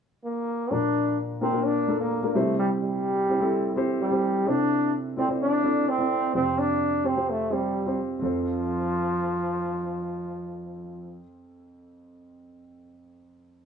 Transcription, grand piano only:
0.71 2.32 A#2 soft
0.71 2.32 F3 soft
0.71 1.30 A#3 medium
0.71 1.30 D4 medium
0.71 1.30 F4 medium
0.71 1.31 A#4 medium
1.41 1.51 A#3 medium
1.41 1.52 D4 soft
1.41 1.52 F4 soft
1.41 1.52 A#4 medium
1.53 1.83 A#3 medium
1.53 1.83 D4 medium
1.53 1.83 F4 medium
1.53 1.83 A#4 medium
1.88 2.18 A#3 medium
1.88 2.18 D4 soft
1.88 2.18 F4 soft
1.88 2.19 A4 medium
2.23 2.35 A#3 medium
2.23 2.35 D4 medium
2.23 2.36 F4 medium
2.23 2.36 A#4 medium
2.35 4.19 C3 medium
2.35 4.19 G3 medium
2.35 3.14 C4 medium
2.35 3.14 E4 medium
2.35 3.14 G4 medium
2.35 3.15 C5 medium
3.29 3.39 C4 medium
3.29 3.39 E4 medium
3.29 3.40 G4 medium
3.29 3.40 C5 medium
3.40 3.70 C4 medium
3.40 3.71 E4 medium
3.40 3.71 G4 medium
3.40 3.71 A4 medium
3.76 4.06 C4 medium
3.76 4.06 E4 medium
3.76 4.06 G4 medium
3.76 4.06 C5 medium
4.11 4.41 C4 medium
4.11 4.41 E4 soft
4.11 4.41 G4 medium
4.11 4.42 C5 medium
4.46 6.31 C3 soft
4.46 5.06 C4 medium
4.46 5.06 E4 medium
4.46 5.06 A4 medium
4.46 5.07 C5 medium
5.17 5.26 C4 medium
5.17 5.27 E4 medium
5.17 5.27 A4 medium
5.17 5.28 D5 medium
5.28 5.58 C4 medium
5.28 5.58 E4 medium
5.28 5.58 A4 medium
5.28 5.59 C5 medium
5.64 5.93 C4 medium
5.64 5.94 E4 medium
5.64 5.94 A4 medium
5.64 5.94 D5 medium
5.99 6.29 C4 medium
5.99 6.29 E4 medium
5.99 6.29 A4 medium
5.99 6.29 D5 medium
6.34 8.18 F2 soft
6.34 8.18 C3 soft
6.34 6.93 C4 medium
6.34 6.94 F4 medium
6.34 6.94 G4 medium
6.34 6.94 C5 medium
7.04 7.14 C4 medium
7.04 7.15 F4 medium
7.04 7.15 G4 soft
7.04 7.15 C5 medium
7.16 7.46 C4 medium
7.16 7.46 F4 medium
7.16 7.46 G4 medium
7.16 7.46 C5 medium
7.50 7.81 C4 medium
7.50 7.81 F4 soft
7.50 7.81 G4 soft
7.50 7.81 C5 medium
7.86 8.16 C4 medium
7.86 8.16 F4 medium
7.86 8.17 G4 medium
7.86 8.17 C5 medium
8.19 11.20 F2 medium
8.19 11.17 C4 medium
8.19 11.19 F4 medium
8.19 11.21 A4 medium
8.25 11.23 C5 medium

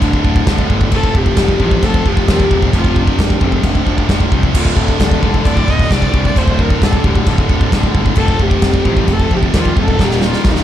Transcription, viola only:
0.01 0.69 D4 medium
0.94 1.18 A4 loud
1.17 1.86 G4 loud
1.84 2.09 A4 loud
2.08 2.74 G4 loud
2.77 3.01 F4 medium
2.99 3.45 D4 medium
3.43 3.65 C4 medium
3.65 4.28 D4 medium
4.54 4.77 F4 medium
4.76 5.47 A4 medium
5.45 5.71 D5 loud
5.69 5.92 D#5 loud
5.91 6.24 D5 loud
6.26 6.39 D5 medium
6.37 6.62 C5 medium
6.60 6.83 A#4 medium
6.82 7.05 A4 medium
7.04 7.26 G4 medium
7.27 7.91 A4 medium
8.18 8.44 A4 loud
8.42 9.14 G4 loud
9.12 9.33 A4 loud
9.35 9.45 G4 loud
9.59 9.78 F4 loud
9.82 10.05 A4 loud
10.04 10.24 G4 loud
10.28 10.52 F4 medium
10.50 10.64 D#4 medium

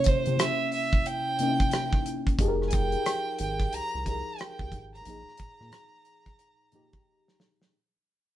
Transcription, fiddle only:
0.07 0.41 C5 medium
0.40 0.72 E5 medium
0.73 1.08 E5 medium
1.07 2.06 G5 medium
2.68 2.75 G#5 medium
2.73 3.39 G5 loud
3.40 3.76 G5 medium
3.74 4.06 A#5 loud
4.08 4.41 A#5 medium
4.40 4.84 G5 medium
4.95 7.35 A#5 medium

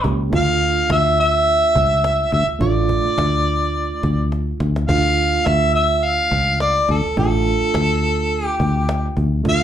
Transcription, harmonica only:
0.35 0.87 F5 loud
0.92 1.17 E5 loud
1.20 2.29 E5 loud
2.33 2.46 E5 medium
2.62 4.28 D5 medium
4.89 5.47 F5 loud
5.46 5.74 E5 loud
5.75 6.06 E5 medium
6.04 6.61 F5 loud
6.61 6.87 D5 medium
6.91 7.16 A4 medium
7.19 8.46 A4 medium
8.46 9.14 G4 medium
9.49 9.63 F5 loud

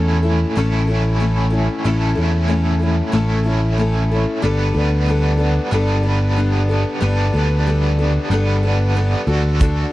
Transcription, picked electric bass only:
0.00 0.44 E2 medium
0.57 1.67 A1 medium
1.85 2.13 A1 medium
2.18 3.00 E2 medium
3.13 4.24 A1 medium
4.44 4.71 G1 medium
4.75 5.58 D2 medium
5.72 6.83 G1 medium
7.02 7.29 G1 medium
7.34 8.17 D2 medium
8.30 9.14 G1 medium
9.27 9.83 D2 medium

